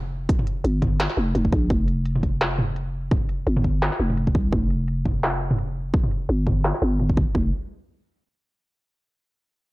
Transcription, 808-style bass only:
0, 0, Header, 1, 2, 480
1, 0, Start_track
1, 0, Tempo, 352941
1, 394, Time_signature, 4, 2, 24, 8
1, 13229, End_track
2, 0, Start_track
2, 0, Title_t, "808-style bass"
2, 0, Program_c, 0, 38
2, 0, Note_on_c, 0, 29, 95
2, 861, Note_off_c, 0, 29, 0
2, 874, Note_on_c, 0, 31, 86
2, 1472, Note_off_c, 0, 31, 0
2, 1595, Note_on_c, 0, 29, 91
2, 1826, Note_off_c, 0, 29, 0
2, 1835, Note_on_c, 0, 29, 97
2, 2058, Note_off_c, 0, 29, 0
2, 2073, Note_on_c, 0, 34, 82
2, 2297, Note_off_c, 0, 34, 0
2, 2315, Note_on_c, 0, 29, 99
2, 4701, Note_off_c, 0, 29, 0
2, 4715, Note_on_c, 0, 31, 89
2, 5313, Note_off_c, 0, 31, 0
2, 5435, Note_on_c, 0, 29, 87
2, 5914, Note_on_c, 0, 36, 82
2, 5934, Note_off_c, 0, 29, 0
2, 6138, Note_off_c, 0, 36, 0
2, 6154, Note_on_c, 0, 29, 99
2, 8541, Note_off_c, 0, 29, 0
2, 8556, Note_on_c, 0, 31, 87
2, 9153, Note_off_c, 0, 31, 0
2, 9275, Note_on_c, 0, 31, 104
2, 9872, Note_off_c, 0, 31, 0
2, 9994, Note_on_c, 0, 29, 93
2, 10218, Note_off_c, 0, 29, 0
2, 13229, End_track
0, 0, End_of_file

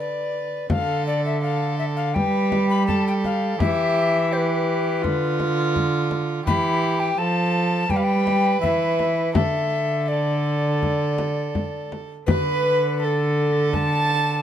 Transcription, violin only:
0, 0, Header, 1, 2, 480
1, 0, Start_track
1, 0, Tempo, 721154
1, 467, Time_signature, 4, 2, 24, 8
1, 5741, Tempo, 727273
1, 9566, End_track
2, 0, Start_track
2, 0, Title_t, "Violin"
2, 0, Program_c, 0, 40
2, 0, Note_on_c, 0, 71, 55
2, 462, Note_off_c, 0, 71, 0
2, 480, Note_on_c, 0, 69, 77
2, 929, Note_off_c, 0, 69, 0
2, 955, Note_on_c, 0, 69, 73
2, 1425, Note_off_c, 0, 69, 0
2, 1440, Note_on_c, 0, 71, 79
2, 1907, Note_off_c, 0, 71, 0
2, 1919, Note_on_c, 0, 69, 77
2, 2391, Note_on_c, 0, 67, 89
2, 2401, Note_off_c, 0, 69, 0
2, 2866, Note_off_c, 0, 67, 0
2, 2870, Note_on_c, 0, 67, 75
2, 3342, Note_on_c, 0, 65, 93
2, 3352, Note_off_c, 0, 67, 0
2, 4295, Note_off_c, 0, 65, 0
2, 4299, Note_on_c, 0, 67, 83
2, 4782, Note_on_c, 0, 69, 73
2, 4792, Note_off_c, 0, 67, 0
2, 5258, Note_off_c, 0, 69, 0
2, 5262, Note_on_c, 0, 71, 81
2, 6204, Note_off_c, 0, 71, 0
2, 6224, Note_on_c, 0, 69, 76
2, 6696, Note_off_c, 0, 69, 0
2, 6720, Note_on_c, 0, 69, 73
2, 7997, Note_off_c, 0, 69, 0
2, 8157, Note_on_c, 0, 71, 98
2, 8604, Note_off_c, 0, 71, 0
2, 8641, Note_on_c, 0, 69, 79
2, 9114, Note_on_c, 0, 81, 108
2, 9124, Note_off_c, 0, 69, 0
2, 9566, Note_off_c, 0, 81, 0
2, 9566, End_track
0, 0, End_of_file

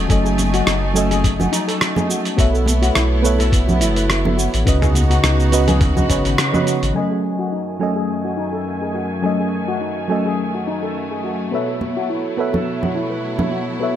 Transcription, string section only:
0, 0, Header, 1, 2, 480
1, 0, Start_track
1, 0, Tempo, 571429
1, 81, Time_signature, 4, 2, 24, 8
1, 11726, End_track
2, 0, Start_track
2, 0, Title_t, "String section"
2, 0, Program_c, 0, 48
2, 0, Note_on_c, 0, 54, 83
2, 0, Note_on_c, 0, 57, 89
2, 0, Note_on_c, 0, 63, 69
2, 0, Note_on_c, 0, 80, 70
2, 1966, Note_off_c, 0, 57, 0
2, 1966, Note_off_c, 0, 63, 0
2, 1967, Note_off_c, 0, 54, 0
2, 1968, Note_off_c, 0, 80, 0
2, 2005, Note_on_c, 0, 64, 84
2, 2009, Note_on_c, 0, 59, 78
2, 2010, Note_on_c, 0, 57, 79
2, 3904, Note_off_c, 0, 64, 0
2, 3906, Note_off_c, 0, 59, 0
2, 3907, Note_off_c, 0, 57, 0
2, 3921, Note_on_c, 0, 49, 84
2, 3922, Note_on_c, 0, 66, 91
2, 3923, Note_on_c, 0, 59, 75
2, 3924, Note_on_c, 0, 63, 76
2, 5822, Note_off_c, 0, 49, 0
2, 5823, Note_off_c, 0, 59, 0
2, 5823, Note_off_c, 0, 66, 0
2, 5824, Note_off_c, 0, 63, 0
2, 5843, Note_on_c, 0, 80, 81
2, 5846, Note_on_c, 0, 42, 69
2, 5846, Note_on_c, 0, 51, 61
2, 5846, Note_on_c, 0, 57, 61
2, 9649, Note_off_c, 0, 80, 0
2, 9650, Note_off_c, 0, 51, 0
2, 9651, Note_off_c, 0, 42, 0
2, 9686, Note_on_c, 0, 47, 70
2, 9690, Note_on_c, 0, 54, 68
2, 9690, Note_on_c, 0, 64, 75
2, 11726, Note_off_c, 0, 47, 0
2, 11726, Note_off_c, 0, 54, 0
2, 11726, Note_off_c, 0, 57, 0
2, 11726, Note_off_c, 0, 64, 0
2, 11726, End_track
0, 0, End_of_file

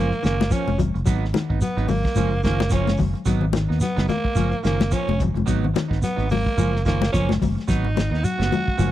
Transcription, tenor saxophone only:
0, 0, Header, 1, 2, 480
1, 0, Start_track
1, 0, Tempo, 551978
1, 925, Time_signature, 4, 2, 24, 8
1, 7754, End_track
2, 0, Start_track
2, 0, Title_t, "Tenor saxophone"
2, 0, Program_c, 0, 66
2, 0, Note_on_c, 0, 58, 96
2, 177, Note_off_c, 0, 58, 0
2, 218, Note_on_c, 0, 58, 90
2, 453, Note_on_c, 0, 61, 93
2, 467, Note_off_c, 0, 58, 0
2, 689, Note_off_c, 0, 61, 0
2, 1408, Note_on_c, 0, 59, 79
2, 1632, Note_on_c, 0, 58, 94
2, 1645, Note_off_c, 0, 59, 0
2, 2111, Note_off_c, 0, 58, 0
2, 2117, Note_on_c, 0, 58, 93
2, 2367, Note_on_c, 0, 61, 92
2, 2380, Note_off_c, 0, 58, 0
2, 2606, Note_off_c, 0, 61, 0
2, 3318, Note_on_c, 0, 59, 81
2, 3544, Note_off_c, 0, 59, 0
2, 3553, Note_on_c, 0, 58, 88
2, 4005, Note_off_c, 0, 58, 0
2, 4047, Note_on_c, 0, 58, 87
2, 4285, Note_on_c, 0, 61, 92
2, 4298, Note_off_c, 0, 58, 0
2, 4525, Note_off_c, 0, 61, 0
2, 5247, Note_on_c, 0, 59, 80
2, 5469, Note_off_c, 0, 59, 0
2, 5485, Note_on_c, 0, 58, 91
2, 5931, Note_off_c, 0, 58, 0
2, 5975, Note_on_c, 0, 58, 89
2, 6191, Note_off_c, 0, 58, 0
2, 6196, Note_on_c, 0, 61, 86
2, 6343, Note_off_c, 0, 61, 0
2, 6679, Note_on_c, 0, 63, 77
2, 7166, Note_on_c, 0, 66, 101
2, 7179, Note_off_c, 0, 63, 0
2, 7754, Note_off_c, 0, 66, 0
2, 7754, End_track
0, 0, End_of_file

